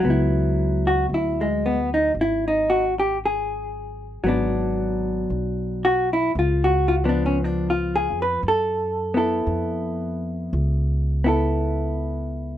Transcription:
0.00 C#2 F#3
0.05 B3
0.10 E4
0.87 F#4
1.09 D2
1.14 E4
1.41 G#3
1.66 B3
1.94 D#4
2.14 G#1
2.21 E4
2.48 D#4
2.70 F#4
3.00 G4
3.25 G#4
4.24 G#1 F#3 B3
4.29 D4
5.30 B1
5.85 F#4
6.13 E4
6.35 C#2 F4
6.64 F#4
6.88 F4
7.04 F3 B3 D4
7.09 D4
7.26 C#4
7.44 D4
7.70 F4
7.96 G#4
8.10 F2
8.22 B4
8.43 F#2
8.48 A4
9.14 B3 E4 A4
9.47 F2
10.53 C#2
11.24 B3 E4 A4

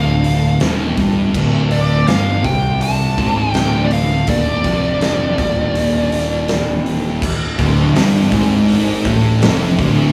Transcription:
Already playing: D1 D2 D3 F4 A4 F5
0.24 open hi-hat
0.60 D#1 D#2, snare, open hi-hat
0.97 G1 G2, kick, open hi-hat
1.34 D1 D2, kick, crash
1.71 D5, open hi-hat
2.08 G1 G2 F5, snare, open hi-hat
2.44 C2 C3 G5, kick, open hi-hat
2.81 A5, open hi-hat
3.18 G#1 G#2, kick, open hi-hat
3.38 G5
3.54 D1 D2, snare, open hi-hat
3.84 D5
3.91 F5, open hi-hat
4.27 D#1 D#2 D5, kick, open hi-hat
4.64 F1 F2, kick, open hi-hat
5.01 snare, open hi-hat
5.38 D#1 D#2, kick, open hi-hat
5.75 open hi-hat
6.12 open hi-hat
6.48 snare, open hi-hat
6.86 open hi-hat
7.22 D3 E4 A4, kick, crash
7.59 D1 D2, kick, open hi-hat
7.94 G1 G2, snare, open hi-hat
8.31 G#1 G#2, kick, open hi-hat
8.68 open hi-hat
9.05 A1 A2, kick, open hi-hat
9.42 F1 F2, snare, open hi-hat
9.79 D1 D2, kick, open hi-hat

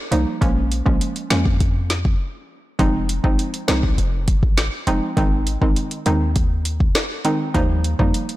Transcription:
0.11 C2 F3 G3 A#3 D#4, closed hi-hat
0.41 A#1 F3 G#3 A#3 C#4, kick, closed hi-hat
0.72 closed hi-hat
0.86 A#1 F3 G#3 A#3 C#4, kick
1.01 closed hi-hat
1.16 closed hi-hat
1.30 F2 F3 G#3 A#3 C#4, snare, closed hi-hat
1.46 kick
1.60 kick, closed hi-hat
1.90 snare, closed hi-hat
2.05 kick
2.79 F1 F3 G#3 C4 D#4, kick, closed hi-hat
3.09 closed hi-hat
3.24 G#1 F3 G#3 C4 D#4, kick
3.39 closed hi-hat
3.54 closed hi-hat
3.68 C2 F3 G#3 C4 D#4, snare, closed hi-hat
3.83 kick
3.98 F1, closed hi-hat
4.28 kick, closed hi-hat
4.43 G#1, kick
4.57 snare, closed hi-hat
4.87 F1 F3 G#3 C4 D#4, closed hi-hat
5.17 G#1 D#3 G#3 C4 D#4, kick, closed hi-hat
5.47 closed hi-hat
5.62 G#1 D#3 G#3 C4 D#4, kick
5.76 closed hi-hat
5.91 closed hi-hat
6.06 D#2 D#3 G#3 C4 D#4, closed hi-hat
6.36 kick, closed hi-hat
6.65 closed hi-hat
6.80 kick
6.95 snare, closed hi-hat
7.25 D#3 G#3 C4 D#4, closed hi-hat
7.54 D#2 F3 G3 A#3 D#4, kick, closed hi-hat
7.84 closed hi-hat
7.99 F2 F3 G3 A#3 D#4, kick
8.14 closed hi-hat
8.29 closed hi-hat

